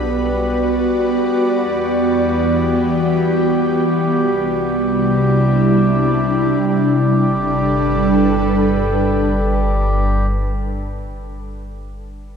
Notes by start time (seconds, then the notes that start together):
Already playing: B1 G3 B3 F#4 B4 D5
1.17 E2 E3
2.10 G4
3.90 C2 C3
4.00 G3
4.40 E4
4.87 D4
6.67 G1 G3
6.83 D4
6.98 A4
7.10 B4